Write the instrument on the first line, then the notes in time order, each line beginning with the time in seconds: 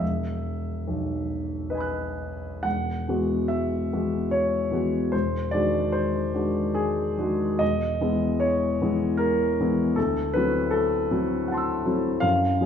grand piano
0.00 E1 E5
0.87 B1
1.70 B4 D#5
1.75 G#5 B5
1.80 F#6
2.63 E1 F#5
3.08 E3 G#3 B3 F#4
3.48 E5
3.93 E3 G#3 B3 F#4
4.31 C#5
4.71 E3 G#3 B3 F#4
5.12 E1 C5
5.51 D#3 G#3 D4 F#4 D5
5.92 C5
6.34 D#3 G#3 D4 F#4
6.74 G#4
7.18 D#3 G#3 D4 F#4
7.59 E1 D#5
8.01 E3 G#3 B3 E4
8.40 C#5
8.81 E3 G#3 B3 E4
9.17 A#4
9.60 E3 G#3 B3 E4
9.96 D2 A4
10.34 F#3 A3 C4 E4 B4
10.71 A4
11.11 F#3 A3 C4 E4
11.48 F#5 A5
11.54 C6 E6
11.85 F#3 A3 C4 E4
12.20 F#2 F5
12.61 F#3 A#3 C#4 G#4